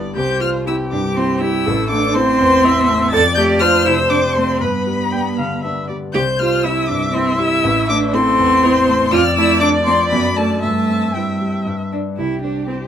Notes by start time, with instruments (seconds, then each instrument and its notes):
Already playing: grand piano G1 G2 G3 B3 D4, violin D5
0.16 grand piano C2, cello G4, viola C5, violin G6
0.41 grand piano G3, cello F4, violin F6
0.67 grand piano C4 E4, cello E4, viola G4, violin E6
0.92 grand piano G2, cello D4, violin D6
1.16 cello C4, grand piano C4 E4, violin C6
1.41 grand piano G3, cello E4, violin E6
1.66 grand piano A1, viola A4
1.90 grand piano A3, cello D4, violin D6
2.15 grand piano C4 E4, cello C4, viola C5, violin C6
2.40 grand piano E2
2.64 grand piano C4 E4, viola E5
2.89 grand piano A3
3.11 grand piano F2, cello A4, viola D5, violin A6
3.35 grand piano A3, cello G4, violin G6
3.59 grand piano C4 D4, cello F4, viola C5, violin F6
3.85 grand piano C3, cello E4, violin E6
4.10 grand piano C4 D4, cello D4, violin D6
4.35 grand piano A3, cello C4, violin C6
4.61 grand piano G2, cello B3, viola B4, violin B5
4.87 grand piano G3
5.12 grand piano B3 D4, viola G5
5.38 grand piano D3, viola F5
5.63 grand piano B3 D4, viola E5
5.88 grand piano G3, viola D5
6.14 grand piano C2, cello G4, viola C5, violin G6
6.39 grand piano G3, cello F4, violin F6
6.63 grand piano C4 E4, cello E4, viola E5, violin E6
6.88 grand piano G2, cello D4, violin D6
7.14 cello C4, grand piano C4 E4, violin C6
7.39 grand piano G3, cello E4, violin E6
7.64 grand piano A1
7.89 grand piano A3, cello D4, violin D6
8.14 grand piano C4 E4, cello C4, viola A4, violin C6
8.39 grand piano E2
8.63 grand piano C4 E4, viola C5
8.88 grand piano A3
9.12 grand piano F2, cello F4, viola D5, violin F6
9.36 grand piano A3, cello E4, violin E6
9.61 cello D4, grand piano D4 A4, violin D6
9.85 grand piano F3, cello C4, violin C6
10.10 grand piano F#2, cello B3, violin B5
10.37 cello A3, grand piano D4 A4, violin A5
10.62 grand piano G2, cello A3, viola E5, violin A5
10.90 grand piano C4
11.15 cello G3, grand piano E4 C5, violin G5
11.41 grand piano G3
11.66 grand piano G2
11.92 grand piano D4 D5, cello D4
12.17 grand piano C2, cello E4, viola G4, violin G4
12.43 grand piano G3 C5, cello D4
12.68 cello C4, grand piano E4 C5, viola C5